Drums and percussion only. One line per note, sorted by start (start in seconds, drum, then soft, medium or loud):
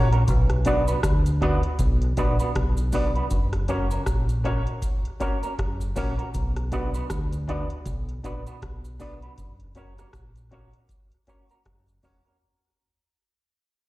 0.12 closed hi-hat soft
0.28 kick loud
0.28 closed hi-hat loud
0.28 cabasa medium
0.50 cross-stick medium
0.50 closed hi-hat medium
0.65 kick medium
0.65 closed hi-hat medium
0.65 cabasa soft
0.88 closed hi-hat medium
0.88 cabasa medium
1.03 kick loud
1.03 cross-stick loud
1.03 closed hi-hat medium
1.03 cabasa medium
1.26 closed hi-hat medium
1.26 cabasa soft
1.41 kick medium
1.41 closed hi-hat medium
1.63 closed hi-hat medium
1.79 kick loud
1.79 closed hi-hat medium
1.79 cabasa medium
2.02 closed hi-hat medium
2.17 kick medium
2.17 closed hi-hat medium
2.17 cabasa medium
2.40 closed hi-hat soft
2.40 cabasa medium
2.55 kick loud
2.55 cross-stick loud
2.55 closed hi-hat medium
2.77 closed hi-hat soft
2.77 cabasa medium
2.92 kick medium
2.92 open hi-hat medium
2.92 cabasa medium
3.16 closed hi-hat soft
3.30 kick loud
3.30 closed hi-hat medium
3.30 cabasa medium
3.53 cross-stick medium
3.53 closed hi-hat medium
3.68 kick medium
3.68 closed hi-hat medium
3.68 cabasa soft
3.91 closed hi-hat medium
3.91 cabasa medium
4.06 kick loud
4.06 cross-stick loud
4.06 closed hi-hat medium
4.06 cabasa medium
4.29 closed hi-hat medium
4.29 cabasa soft
4.44 kick medium
4.44 closed hi-hat medium
4.67 closed hi-hat medium
4.82 kick loud
4.82 closed hi-hat loud
4.82 cabasa medium
5.05 closed hi-hat medium
5.20 kick medium
5.20 closed hi-hat medium
5.20 cabasa medium
5.43 closed hi-hat soft
5.43 cabasa medium
5.58 kick loud
5.58 cross-stick loud
5.58 closed hi-hat medium
5.81 closed hi-hat soft
5.81 cabasa medium
5.96 kick medium
5.96 open hi-hat medium
5.96 cabasa medium
6.19 closed hi-hat soft
6.34 kick loud
6.34 closed hi-hat loud
6.34 cabasa medium
6.56 cross-stick medium
6.56 closed hi-hat medium
6.72 kick medium
6.72 closed hi-hat medium
6.72 cabasa soft
6.94 closed hi-hat medium
6.94 cabasa medium
7.10 kick loud
7.10 cross-stick loud
7.10 closed hi-hat medium
7.10 cabasa medium
7.32 closed hi-hat medium
7.32 cabasa soft
7.48 kick medium
7.48 closed hi-hat medium
7.70 closed hi-hat medium
7.86 kick loud
7.86 closed hi-hat loud
7.86 cabasa medium
8.09 closed hi-hat medium
8.24 kick medium
8.24 closed hi-hat medium
8.24 cabasa medium
8.47 closed hi-hat soft
8.47 cabasa medium
8.62 kick loud
8.62 cross-stick loud
8.62 closed hi-hat medium
8.85 closed hi-hat medium
8.85 cabasa medium
9.00 kick medium
9.00 open hi-hat medium
9.00 cabasa medium
9.22 closed hi-hat soft
9.38 kick loud
9.38 closed hi-hat loud
9.38 cabasa medium
9.60 closed hi-hat medium
9.75 kick medium
9.75 closed hi-hat medium
9.75 cabasa soft
9.98 cross-stick medium
9.98 closed hi-hat medium
9.98 cabasa medium
10.13 kick loud
10.13 cross-stick loud
10.13 closed hi-hat medium
10.13 cabasa medium
10.36 closed hi-hat medium
10.36 cabasa soft
10.51 kick medium
10.51 closed hi-hat medium
10.73 closed hi-hat soft
10.89 kick loud
10.89 closed hi-hat loud
10.89 cabasa medium
11.12 closed hi-hat medium
11.27 kick medium
11.27 closed hi-hat medium
11.27 cabasa soft
11.50 closed hi-hat soft
11.50 cabasa medium
11.65 kick loud
11.65 cross-stick loud
11.65 closed hi-hat medium
11.88 closed hi-hat soft
11.88 cabasa medium
12.03 kick medium
12.03 open hi-hat medium
12.03 cabasa medium
12.26 closed hi-hat soft